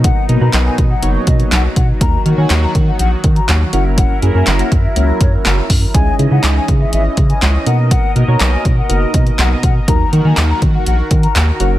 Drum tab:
HH |x-x-x-x-x-xxx-x-|x-x-x-x-x-xxx-x-|x-x-xxx-x-x-x-o-|x-x-x-x-x-xxx-x-|
CP |----x-------x---|----x-------x---|----x-------x---|----x-------x---|
SD |----o-------o---|----o-------o---|----o-------o---|----o-------o---|
BD |o-----o---o---o-|o-----o---o-----|o-----o---o---o-|o-----o---o-----|

HH |x-x-x-x-x-xxx-x-|x-x-x-x-x-xxx-x-|
CP |----x-------x---|----x-------x---|
SD |----o-------o---|----o-------o---|
BD |o-----o---o---o-|o-----o---o-----|